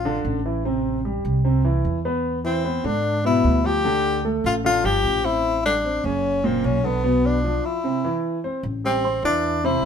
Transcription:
Already playing: upright bass A1, tenor saxophone F4
0.05 grand piano D3 D4
0.25 upright bass A1
0.46 grand piano E3 E4
0.65 grand piano C3 C4
1.05 grand piano G3 G4
1.25 upright bass C2
1.44 grand piano C3 C4
1.65 grand piano E3 E4
1.85 upright bass E2
2.05 grand piano B3 B4
2.44 grand piano E3 E4, tenor saxophone C4
2.64 grand piano B3 B4
2.84 upright bass G#2, grand piano D3 D4, tenor saxophone D4
3.24 grand piano B2 B3, tenor saxophone E4
3.44 upright bass D2
3.64 grand piano F3 F4, tenor saxophone G4
3.85 grand piano D3 D4
4.25 grand piano A3 A4
4.44 upright bass A1, tenor saxophone F4
4.64 grand piano D3 D4, tenor saxophone F4
4.84 upright bass G1, grand piano F3 F4, tenor saxophone G4
5.04 upright bass A1
5.24 grand piano C4 C5, tenor saxophone E4
5.65 grand piano G3 G4, tenor saxophone D4
5.85 grand piano C4 C5
6.04 upright bass F#1, grand piano C#3 C#4, tenor saxophone C#4
6.44 grand piano A#2 A#3, tenor saxophone C4
6.64 upright bass B1, tenor saxophone C#4
6.84 grand piano D3 D4, tenor saxophone B3
7.04 grand piano B2 B3
7.26 tenor saxophone D4
7.44 grand piano F3 F4
7.65 tenor saxophone E4
7.84 grand piano C3 C4
8.04 grand piano E3 E4
8.44 grand piano C4 C5
8.63 upright bass A1
8.84 grand piano G3 G4 G5, tenor saxophone C4
9.04 grand piano C4 C5 C6
9.23 upright bass E2, grand piano E3 E4 E5, tenor saxophone D4
9.64 grand piano C3 C4 C5, tenor saxophone E4

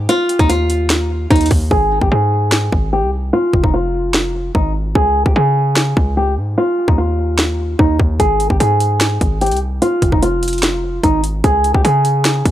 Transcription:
0.09 nylon-string guitar F4, closed hi-hat
0.29 closed hi-hat
0.39 808-style bass D#2, nylon-string guitar D#4, kick, closed hi-hat
0.49 nylon-string guitar F4, closed hi-hat
0.70 closed hi-hat
0.90 snare, closed hi-hat
1.31 808-style bass D#2, nylon-string guitar D#4, kick, closed hi-hat
1.36 closed hi-hat
1.41 closed hi-hat
1.46 closed hi-hat
1.51 808-style bass D#2, kick, open hi-hat
1.71 808-style bass G#1, nylon-string guitar G#4, kick
2.01 808-style bass G#1, nylon-string guitar G4, kick
2.12 808-style bass G#2, nylon-string guitar G#4
2.52 snare
2.72 808-style bass G#1, kick
2.93 nylon-string guitar G4
3.03 808-style bass C2
3.33 nylon-string guitar F4
3.53 808-style bass F1, kick
3.64 808-style bass F1, nylon-string guitar D#4, kick
3.74 nylon-string guitar F4
4.14 snare
4.55 808-style bass G#1, nylon-string guitar D#4, kick
4.95 808-style bass C#2, nylon-string guitar G#4, kick
5.26 808-style bass C#2, nylon-string guitar G4, kick
5.36 808-style bass C#3, nylon-string guitar G#4
5.76 snare
5.97 808-style bass C#2, kick
6.17 nylon-string guitar G4
6.37 808-style bass G#2
6.58 nylon-string guitar F4
6.88 808-style bass D#2, nylon-string guitar D#4, kick
6.98 nylon-string guitar F4
7.39 snare
7.79 808-style bass D#2, nylon-string guitar D#4, kick
8.00 808-style bass D#2, kick
8.20 808-style bass G#1, nylon-string guitar G#4, kick, closed hi-hat
8.40 closed hi-hat
8.50 808-style bass G#1, nylon-string guitar G4, kick
8.60 808-style bass G#2, nylon-string guitar G#4, closed hi-hat
8.80 closed hi-hat
9.01 snare, closed hi-hat
9.21 808-style bass G#1, kick, closed hi-hat
9.41 nylon-string guitar G4, closed hi-hat
9.46 closed hi-hat
9.51 808-style bass C2, closed hi-hat
9.57 closed hi-hat
9.82 nylon-string guitar F4, closed hi-hat
10.02 808-style bass F1, kick, closed hi-hat
10.12 808-style bass F1, nylon-string guitar D#4, kick
10.22 nylon-string guitar F4, closed hi-hat
10.43 closed hi-hat
10.48 closed hi-hat
10.53 closed hi-hat
10.58 closed hi-hat
10.63 snare, closed hi-hat
11.03 808-style bass G#1, nylon-string guitar D#4, kick, closed hi-hat
11.24 closed hi-hat
11.44 808-style bass C#2, nylon-string guitar G#4, kick, closed hi-hat
11.64 closed hi-hat
11.74 808-style bass C#2, nylon-string guitar G4, kick
11.85 808-style bass C#3, nylon-string guitar G#4, closed hi-hat
12.05 closed hi-hat
12.25 snare, closed hi-hat
12.45 808-style bass C#2, kick, closed hi-hat

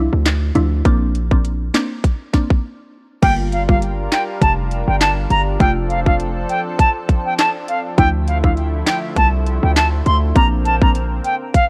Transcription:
Already playing: synth pluck F3 D4 E4
0.13 808-style bass D2
0.26 snare, clap, closed hi-hat
0.55 808-style bass D2, synth pluck F3 D4 E4, closed hi-hat
0.85 808-style bass A#1, synth pluck A#3 C4 D4, kick, closed hi-hat
1.15 closed hi-hat
1.31 synth pluck A#3 C4 D4, kick
1.45 closed hi-hat
1.74 synth pluck A#3 C4 D4, snare, clap, closed hi-hat
2.04 kick, closed hi-hat
2.33 synth pluck A#3 C4 D4, kick, snare, closed hi-hat
2.50 kick
3.22 808-style bass G1, synth pluck G3 A#3 F4, analog synth pad G3 D4 F4 A#4, flute G5, kick, closed hi-hat, crash
3.52 flute F5, closed hi-hat
3.69 synth pluck G3 A#3 F4, flute F5, kick
3.82 closed hi-hat
4.12 flute G5, snare, clap, closed hi-hat
4.41 808-style bass F1, flute A5, kick, closed hi-hat
4.71 closed hi-hat
4.88 808-style bass G1, flute G5
5.01 flute A5, snare, clap, closed hi-hat
5.30 808-style bass G1, flute A#5, closed hi-hat
5.60 808-style bass F1, analog synth pad F3 C4 A4, synth pluck A3 D4 F4, flute G5, kick, closed hi-hat
5.90 flute F5, closed hi-hat
6.06 synth pluck A3 D4 F4, flute F5, kick
6.20 closed hi-hat
6.49 flute G5, closed hi-hat
6.79 flute A5, kick, closed hi-hat
7.09 kick, closed hi-hat
7.26 flute G5
7.39 flute A5, snare, clap, closed hi-hat
7.68 flute F5, closed hi-hat
7.98 808-style bass D2, analog synth pad D3 F3 A3 E4, synth pluck F3 D4 E4, flute G5, kick, closed hi-hat
8.28 flute F5, closed hi-hat
8.44 synth pluck F3 D4 E4, flute F5, kick
8.57 closed hi-hat
8.87 flute G5, snare, clap, closed hi-hat
9.17 808-style bass C2, flute A5, kick, closed hi-hat
9.47 closed hi-hat
9.63 808-style bass D2, flute G5
9.76 flute A5, snare, clap, closed hi-hat
10.06 808-style bass D2, flute C6, closed hi-hat
10.35 808-style bass A#1, synth pluck A#3 C4 D4, analog synth pad A#3 C4, flute A#5, kick, closed hi-hat
10.66 flute A5, closed hi-hat
10.82 synth pluck A#3 C4 D4, flute A#5, kick
10.95 closed hi-hat
11.25 flute G5, closed hi-hat
11.54 flute F5, kick, closed hi-hat

